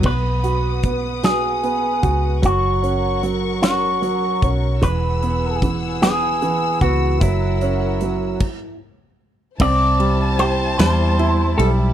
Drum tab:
CC |x-----|------|------|---x--|
RD |------|------|------|------|
HH |-xxxxx|xxxxxx|xxxxxx|xxx---|
SD |---o--|---o--|---o--|------|
BD |o-o--o|o----o|o-o--o|o--o--|

CC |x-----|
RD |-xxxxx|
HH |------|
SD |---o--|
BD |o-----|